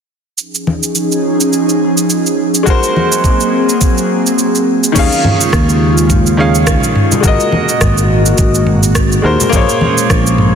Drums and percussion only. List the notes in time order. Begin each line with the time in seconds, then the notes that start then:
0.38 cabasa
0.55 cabasa
0.67 high conga
0.83 cabasa
0.95 cabasa
1.12 cabasa
1.41 cabasa
1.53 cabasa
1.69 cabasa
1.98 cabasa
2.10 cabasa
2.26 cabasa
2.55 cabasa
2.67 kick, cabasa
2.83 cabasa
2.96 high conga
3.12 cabasa
3.24 kick, cabasa
3.40 cabasa
3.69 cabasa
3.81 kick, cabasa
3.98 cabasa
4.27 cabasa
4.39 cabasa
4.55 cabasa
4.84 cabasa
4.96 kick, crash, cabasa
5.12 cabasa
5.24 mid tom, high conga, low conga
5.41 cabasa
5.53 kick, cross-stick, cabasa
5.69 cabasa
5.98 cabasa
6.10 kick, mid tom, cabasa
6.26 cabasa
6.55 cabasa
6.67 kick, cross-stick, cabasa
6.83 cabasa
6.96 mid tom
7.12 low conga, cabasa
7.24 kick, cabasa
7.40 cabasa
7.52 high conga, low conga
7.69 cabasa
7.81 kick, cross-stick, mid tom, cabasa
7.98 cabasa
8.26 cabasa
8.38 kick, cabasa
8.54 cabasa
8.67 mid tom
8.83 cabasa
8.95 kick, cross-stick, cabasa
9.12 cabasa
9.40 low conga, cabasa
9.53 kick, mid tom, cabasa
9.69 cabasa
9.81 high conga, low conga
9.98 cabasa
10.10 kick, cross-stick, cabasa
10.27 cabasa
10.38 mid tom